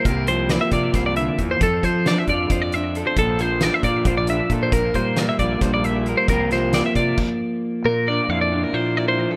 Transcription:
<<
  \new Staff \with { instrumentName = "Clean electric guitar" } { \time 7/8 \key bes \lydian \tempo 4 = 135 bes'8 c''8 d''16 e''16 d''8 c''16 d''16 e''8 r16 c''16 | a'8 c''8 d''16 e''16 d''8 c''16 d''16 e''8 r16 c''16 | a'8 c''8 d''16 e''16 d''8 c''16 d''16 e''8 r16 c''16 | bes'8 c''8 d''16 e''16 d''8 c''16 d''16 e''8 r16 c''16 |
bes'8 c''8 d''16 e''16 d''8 r4. | bes'8 d''8 f''16 d''8 bes'16 c''8 d''16 c''8 a'16 | }
  \new Staff \with { instrumentName = "Clean electric guitar" } { \time 7/8 \key bes \lydian << { <bes g'>4 bes8 f'2 | a'4 d'8 f'4 d'8 a'8 | a'4 d'8 f'4 d'8 a'8 | bes'4 bes8 f'4 bes8 bes'8 |
<f bes f' g'>4 bes8 f'8 r4. | r8 d'8 e'8 d'4 e'4 | } \\ { c8 f4. c8 d8 e8 | f,8 f4. f4. | bes,8 f4. f4. | bes,8 g4. g4. |
c8 f2. | bes,2 f4 f8 | } >> }
  \new Staff \with { instrumentName = "Fingered electric bass" } { \clef bass \time 7/8 \key bes \lydian c,4. c8 c,4 e,8 | f,8 f4 f,8 f,4. | bes,,4. bes,8 bes,,4 bes,8 | bes,,8 bes,4 bes,,8 bes,,4. |
c,4. c8 r4. | bes,4 f,4 bes,4. | }
  \new DrumStaff \with { instrumentName = "Drums" } \drummode { \time 7/8 <hh bd>8 hh8 <hh sn>8 <hh bd>8 <hh bd sn>8 hh8 <hh bd>8 | <hh bd>8 <hh bd>8 <hh sn>8 <hh bd>8 <hh bd>8 hh8 hh8 | <hh bd>8 hh8 <hh sn>8 <hh bd>8 <hh bd>8 hh8 <hh bd>8 | <hh bd>8 <hh bd>8 <hh sn>8 <hh bd>8 <hh bd sn>8 hh8 hh8 |
<hh bd>8 <hh sn>8 <hh sn>8 <hh bd>8 <cymc bd>4. | r4 r4 r4. | }
>>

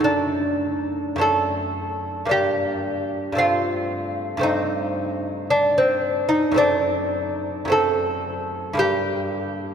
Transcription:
<<
  \new Staff \with { instrumentName = "Lute" } { \time 3/4 \key d \phrygian \tempo 4 = 56 d'4 a'4 g'4 | f'4 ees'4 d'16 c'8 ees'16 | d'4 a'4 g'4 | }
  \new Staff \with { instrumentName = "Lute" } { \time 3/4 \key d \phrygian <fis, a>4 <fis, a d'>4 <g, bes d'>4 | <g, a c'>4 <g, a c'>2 | <fis, a c'>4 <fis, a c'>4 <g, g bes>4 | }
>>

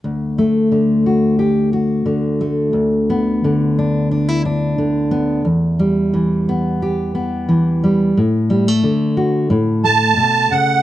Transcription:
<<
  \new Staff \with { instrumentName = "Accordion" } { \time 4/4 \key d \major \tempo 4 = 89 r1 | r1 | r1 | r2 r8 a''4 fis''8 | }
  \new Staff \with { instrumentName = "Steel-string acoustic guitar" } { \clef bass \time 4/4 \key d \major << { r8 a4 fis'8 g'8 fis'4 a8 | r8 b4 d'8 d'16 e'16 d'4 b8 | r8 g4 b8 g'8 b4 g8 | r8 g16 a8. fis'8 r8 a4. | } \\ { d,4 d2 d4 | d,4 d2 d4 | e,4 e2 e4 | a,4 d4 a,4 b,8 cis8 | } >> }
>>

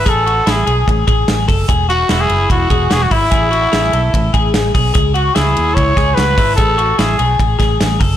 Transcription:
<<
  \new Staff \with { instrumentName = "Clean electric guitar" } { \time 4/4 \key a \lydian \tempo 4 = 147 gis'8 fis'8 e'8 gis'4 gis'4 a'8 | gis'8 fis'8 e'4. gis'8 fis'8 e'8 | gis'8 fis'8 gis'8 a'4 gis'4 gis'8 | gis'8 fis'8 e'4. gis'8 fis'8 e'8 |
gis'8 fis'8 e'8 gis'4 gis'4 a'8 | }
  \new Staff \with { instrumentName = "Trumpet" } { \time 4/4 \key a \lydian a'4 gis'4 r2 | r8 fis'8. gis'8. fis'4 gis'16 fis'16 e'8~ | e'2. r4 | r8 fis'8 gis'4 cis''4 b'4 |
a'4 gis'4 r2 | }
  \new Staff \with { instrumentName = "Fingered electric bass" } { \clef bass \time 4/4 \key a \lydian a,,4 a,,8 b,,8 a,,8 a,,8 a,,8 fis,,8 | e,,4 e,,8 fis,,8 e,,8 e,,8 e,,8 gis,,8 | a,,4 a,,8 b,,8 a,,8 a,,8 a,,8 b,,8 | cis,4 cis,8 dis,8 cis,8 cis,8 cis,8 gis,,8 |
a,,4 a,,8 b,,8 a,,8 a,,8 a,,8 fis,,8 | }
  \new DrumStaff \with { instrumentName = "Drums" } \drummode { \time 4/4 <hhp bd cymr>8 cymr8 <cymr sn>8 cymr8 <bd cymr>8 <bd cymr>8 <cymr sn>8 <hho bd cymr>8 | <hhp bd cymr>8 cymr8 <cymr sn>8 cymr8 <bd cymr>8 <bd cymr>8 <cymr sn>8 <hho bd cymr>8 | <hhp bd cymr>8 cymr8 <cymr sn>8 cymr8 <bd cymr>8 <bd cymr>8 <cymr sn>8 <hho bd cymr>8 | <hhp bd cymr>8 cymr8 <cymr sn>8 cymr8 <bd cymr>8 <bd cymr sn>8 <cymr sn>8 <hho bd cymr>8 |
<hhp bd cymr>8 cymr8 <cymr sn>8 cymr8 <bd cymr>8 <bd cymr sn>8 <cymr sn>8 <hho bd cymr>8 | }
>>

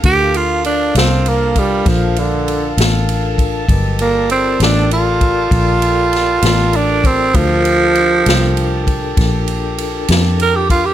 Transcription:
<<
  \new Staff \with { instrumentName = "Horn section" } { \time 12/8 \key g \minor \tempo 4. = 66 << { a''1.~ | a''1.~ | a''1. | } \\ { <a' f''>1. | <g' g''>1.~ | <g' g''>1. | } >> }
  \new Staff \with { instrumentName = "Tonewheel organ" } { \time 12/8 \key g \minor <d' f' a' bes'>1. | <fis bes' b' ees''>8 <f' a' bes' d''>1~ <f' a' bes' d''>4. | <d' f' a' bes'>1. | }
  \new Staff \with { instrumentName = "Tenor saxophone" } { \time 12/8 \key g \minor g'8 f'8 d'8 c'8 bes8 g8 f8 d4 r4. | r8 bes8 c'8 d'8 f'2. d'8 c'8 | f2. r2 bes'16 g'16 f'16 g'16 | }
  \new Staff \with { instrumentName = "Fingered electric bass" } { \clef bass \time 12/8 \key g \minor d,4. c,4. bes,,4. a,,4. | g,,4. a,,4. bes,,4. a,,4. | d,4. c,4. bes,,4. f,4. | }
  \new DrumStaff \with { instrumentName = "Drums" } \drummode { \time 12/8 <bd cymr>8 cymr8 cymr8 <cymr sn>8 cymr8 <bd cymr>8 <bd cymr sn>8 cymr8 cymr8 <cymr sn>8 cymr8 <bd cymr>8 | <bd cymr>8 cymr8 cymr8 <cymr sn>8 cymr8 <bd cymr>8 <bd cymr>8 cymr8 <cymr sn>8 <cymr sn>8 cymr8 <bd cymr>8 | <bd cymr>8 cymr8 cymr8 <cymr sn>8 cymr8 <bd cymr>8 <bd cymr sn>8 cymr8 cymr8 <cymr sn>8 cymr8 <bd cymr>8 | }
>>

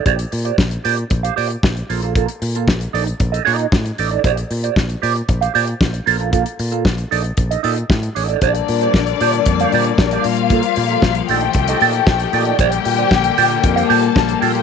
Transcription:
<<
  \new Staff \with { instrumentName = "String section" } { \time 4/4 \key bes \major \tempo 4 = 115 r1 | r1 | r1 | r1 |
<d' d''>2.~ <d' d''>8 <f' f''>8~ | <f' f''>4. <g' g''>2~ <g' g''>8 | <g' g''>2~ <g' g''>8 <a' a''>4 <g' g''>8 | }
  \new Staff \with { instrumentName = "Clean electric guitar" } { \time 4/4 \key bes \major <g' c'' d''>16 r8 <g' c'' d''>16 r8 <g' c'' d''>16 r8 <g' c'' f''>16 <g' c'' d''>16 r8. <bes f' a'>16 <bes f' a'>16 | <bes f' a'>16 r8 <bes f' a'>16 r8 <ees' a' d''>16 r8 <ees' a' ees''>16 <ees' a' d''>8 r8 <ees' a' d''>16 <ees' a' d''>16 | <g' c'' d''>16 r8 <g' c'' d''>16 r8 <g' c'' d''>16 r8 <g' c'' f''>16 <g' c'' d''>16 r8. <bes f' a'>16 <bes f' a'>16 | <bes f' a'>16 r8 <bes f' a'>16 r8 <ees' a' d''>16 r8 <ees' a' ees''>16 <ees' a' d''>16 r8. <ees' a' d''>16 <ees' a' d''>16 |
<g' c'' d''>16 r8 <g' c'' d''>16 r8 <g' c'' d''>16 r8 <g' c'' f''>16 <g' c'' d''>16 r8 <g' c'' d''>16 r8 | <bes f' a'>16 r8 <bes f' a'>16 r8 <ees' a' d''>16 r8 <ees' a' ees''>16 <ees' a' d''>16 r8. <ees' a' d''>16 <ees' a' d''>16 | <g' c'' d''>16 r8 <g' c'' d''>16 r8 <g' c'' d''>16 r8 <g' c'' f''>16 <g' c'' d''>16 r8. <bes f' a'>16 <bes f' a'>16 | }
  \new Staff \with { instrumentName = "String section" } { \clef bass \time 4/4 \key bes \major << { r1 | r1 | r1 | r1 |
<g bes>1~ | <g bes>4. a2~ a8 | <g bes>1 | } \\ { r1 | r1 | r1 | r1 |
d2.~ d8 f8~ | f4. ees2~ ees8 | d2.~ d8 f8 | } >> }
  \new Staff \with { instrumentName = "Fingered electric bass" } { \clef bass \time 4/4 \key bes \major bes,,8 bes,8 bes,,8 bes,8 bes,,8 bes,8 bes,,8 bes,,8~ | bes,,8 bes,8 bes,,8 bes,,8 bes,,8 bes,8 a,8 a,,8 | bes,,8 bes,8 bes,,8 bes,8 bes,,8 bes,8 bes,,8 bes,,8~ | bes,,8 bes,8 bes,,8 bes,,8 bes,,8 bes,8 a,8 a,,8 |
bes,,8 bes,8 bes,,8 bes,8 f,8 bes,8 bes,,8 bes,8~ | bes,8 bes,8 bes,,8 bes,,8 c,8 bes,8 bes,,8 bes,8 | bes,,8 bes,8 bes,,8 bes,8 f,8 bes,8 bes,,8 bes,8 | }
  \new DrumStaff \with { instrumentName = "Drums" } \drummode { \time 4/4 <hh bd>16 hh16 hho16 hh16 <bd sn>16 hh16 hho16 hh16 <hh bd>16 hh16 hho16 hh16 <bd sn>16 hh16 hho16 hh16 | <hh bd>16 hh16 hho16 hh16 <bd sn>16 hh16 hho16 hh16 <hh bd>16 hh16 hho16 hh16 <bd sn>16 hh16 hho16 hh16 | <hh bd>16 hh16 hho16 hh16 <bd sn>16 hh16 hho16 hh16 <hh bd>16 hh16 hho16 hh16 <bd sn>16 hh16 hho16 hh16 | <hh bd>16 hh16 hho16 hh16 <bd sn>16 hh16 hho16 hh16 <hh bd>16 hh16 hho16 hh16 <bd sn>16 hh16 hho16 hh16 |
<hh bd>16 hh16 hho16 hh16 <bd sn>16 hh16 hho16 hh16 <hh bd>16 hh16 hho16 hh16 <bd sn>16 hh16 hho16 hh16 | <hh bd>16 hh16 hho16 hh16 <bd sn>16 hh16 hho16 hh16 <hh bd>16 hh16 hho16 hh16 <bd sn>16 hh16 hho16 hh16 | <hh bd>16 hh16 hho16 hh16 <bd sn>16 hh16 hho16 hh16 <hh bd>16 hh16 hho16 hh16 <bd sn>16 hh16 hho16 hh16 | }
>>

